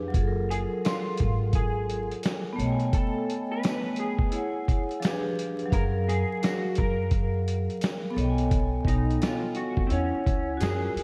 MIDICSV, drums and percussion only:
0, 0, Header, 1, 2, 480
1, 0, Start_track
1, 0, Key_signature, 6, "major"
1, 0, Tempo, 697674
1, 96, Time_signature, 4, 2, 24, 8
1, 7591, End_track
2, 0, Start_track
2, 0, Title_t, "Drums"
2, 97, Note_on_c, 9, 36, 109
2, 99, Note_on_c, 9, 42, 76
2, 166, Note_off_c, 9, 36, 0
2, 168, Note_off_c, 9, 42, 0
2, 352, Note_on_c, 9, 42, 77
2, 421, Note_off_c, 9, 42, 0
2, 583, Note_on_c, 9, 42, 73
2, 583, Note_on_c, 9, 54, 61
2, 592, Note_on_c, 9, 38, 102
2, 651, Note_off_c, 9, 54, 0
2, 652, Note_off_c, 9, 42, 0
2, 661, Note_off_c, 9, 38, 0
2, 808, Note_on_c, 9, 42, 63
2, 826, Note_on_c, 9, 36, 72
2, 877, Note_off_c, 9, 42, 0
2, 895, Note_off_c, 9, 36, 0
2, 1053, Note_on_c, 9, 42, 71
2, 1054, Note_on_c, 9, 36, 89
2, 1122, Note_off_c, 9, 36, 0
2, 1122, Note_off_c, 9, 42, 0
2, 1305, Note_on_c, 9, 42, 60
2, 1374, Note_off_c, 9, 42, 0
2, 1455, Note_on_c, 9, 42, 35
2, 1524, Note_off_c, 9, 42, 0
2, 1535, Note_on_c, 9, 42, 81
2, 1537, Note_on_c, 9, 54, 67
2, 1552, Note_on_c, 9, 38, 103
2, 1604, Note_off_c, 9, 42, 0
2, 1606, Note_off_c, 9, 54, 0
2, 1621, Note_off_c, 9, 38, 0
2, 1785, Note_on_c, 9, 42, 57
2, 1854, Note_off_c, 9, 42, 0
2, 1924, Note_on_c, 9, 42, 35
2, 1992, Note_off_c, 9, 42, 0
2, 2016, Note_on_c, 9, 36, 116
2, 2016, Note_on_c, 9, 42, 75
2, 2085, Note_off_c, 9, 36, 0
2, 2085, Note_off_c, 9, 42, 0
2, 2269, Note_on_c, 9, 42, 72
2, 2338, Note_off_c, 9, 42, 0
2, 2500, Note_on_c, 9, 54, 64
2, 2502, Note_on_c, 9, 42, 70
2, 2511, Note_on_c, 9, 38, 101
2, 2569, Note_off_c, 9, 54, 0
2, 2570, Note_off_c, 9, 42, 0
2, 2580, Note_off_c, 9, 38, 0
2, 2726, Note_on_c, 9, 42, 66
2, 2795, Note_off_c, 9, 42, 0
2, 2880, Note_on_c, 9, 36, 78
2, 2949, Note_off_c, 9, 36, 0
2, 2971, Note_on_c, 9, 42, 65
2, 3040, Note_off_c, 9, 42, 0
2, 3221, Note_on_c, 9, 36, 85
2, 3225, Note_on_c, 9, 42, 54
2, 3290, Note_off_c, 9, 36, 0
2, 3294, Note_off_c, 9, 42, 0
2, 3377, Note_on_c, 9, 42, 34
2, 3446, Note_off_c, 9, 42, 0
2, 3457, Note_on_c, 9, 42, 87
2, 3459, Note_on_c, 9, 54, 69
2, 3474, Note_on_c, 9, 38, 111
2, 3525, Note_off_c, 9, 42, 0
2, 3528, Note_off_c, 9, 54, 0
2, 3542, Note_off_c, 9, 38, 0
2, 3708, Note_on_c, 9, 42, 64
2, 3777, Note_off_c, 9, 42, 0
2, 3846, Note_on_c, 9, 42, 35
2, 3915, Note_off_c, 9, 42, 0
2, 3937, Note_on_c, 9, 36, 119
2, 3940, Note_on_c, 9, 42, 74
2, 4005, Note_off_c, 9, 36, 0
2, 4008, Note_off_c, 9, 42, 0
2, 4192, Note_on_c, 9, 42, 76
2, 4261, Note_off_c, 9, 42, 0
2, 4422, Note_on_c, 9, 54, 57
2, 4423, Note_on_c, 9, 42, 72
2, 4432, Note_on_c, 9, 38, 100
2, 4491, Note_off_c, 9, 54, 0
2, 4492, Note_off_c, 9, 42, 0
2, 4501, Note_off_c, 9, 38, 0
2, 4647, Note_on_c, 9, 42, 62
2, 4666, Note_on_c, 9, 36, 76
2, 4716, Note_off_c, 9, 42, 0
2, 4735, Note_off_c, 9, 36, 0
2, 4892, Note_on_c, 9, 42, 67
2, 4894, Note_on_c, 9, 36, 91
2, 4961, Note_off_c, 9, 42, 0
2, 4962, Note_off_c, 9, 36, 0
2, 5145, Note_on_c, 9, 42, 60
2, 5214, Note_off_c, 9, 42, 0
2, 5297, Note_on_c, 9, 42, 33
2, 5365, Note_off_c, 9, 42, 0
2, 5375, Note_on_c, 9, 42, 84
2, 5377, Note_on_c, 9, 54, 63
2, 5392, Note_on_c, 9, 38, 110
2, 5444, Note_off_c, 9, 42, 0
2, 5446, Note_off_c, 9, 54, 0
2, 5461, Note_off_c, 9, 38, 0
2, 5626, Note_on_c, 9, 42, 62
2, 5695, Note_off_c, 9, 42, 0
2, 5766, Note_on_c, 9, 42, 37
2, 5835, Note_off_c, 9, 42, 0
2, 5856, Note_on_c, 9, 36, 109
2, 5857, Note_on_c, 9, 42, 73
2, 5925, Note_off_c, 9, 36, 0
2, 5926, Note_off_c, 9, 42, 0
2, 6087, Note_on_c, 9, 36, 99
2, 6111, Note_on_c, 9, 42, 77
2, 6156, Note_off_c, 9, 36, 0
2, 6179, Note_off_c, 9, 42, 0
2, 6265, Note_on_c, 9, 42, 37
2, 6334, Note_off_c, 9, 42, 0
2, 6341, Note_on_c, 9, 54, 58
2, 6343, Note_on_c, 9, 42, 73
2, 6352, Note_on_c, 9, 38, 98
2, 6410, Note_off_c, 9, 54, 0
2, 6411, Note_off_c, 9, 42, 0
2, 6421, Note_off_c, 9, 38, 0
2, 6568, Note_on_c, 9, 42, 57
2, 6637, Note_off_c, 9, 42, 0
2, 6721, Note_on_c, 9, 36, 86
2, 6790, Note_off_c, 9, 36, 0
2, 6812, Note_on_c, 9, 42, 67
2, 6881, Note_off_c, 9, 42, 0
2, 7062, Note_on_c, 9, 36, 84
2, 7066, Note_on_c, 9, 42, 57
2, 7131, Note_off_c, 9, 36, 0
2, 7135, Note_off_c, 9, 42, 0
2, 7297, Note_on_c, 9, 42, 90
2, 7298, Note_on_c, 9, 54, 68
2, 7314, Note_on_c, 9, 38, 108
2, 7366, Note_off_c, 9, 42, 0
2, 7367, Note_off_c, 9, 54, 0
2, 7383, Note_off_c, 9, 38, 0
2, 7549, Note_on_c, 9, 42, 64
2, 7591, Note_off_c, 9, 42, 0
2, 7591, End_track
0, 0, End_of_file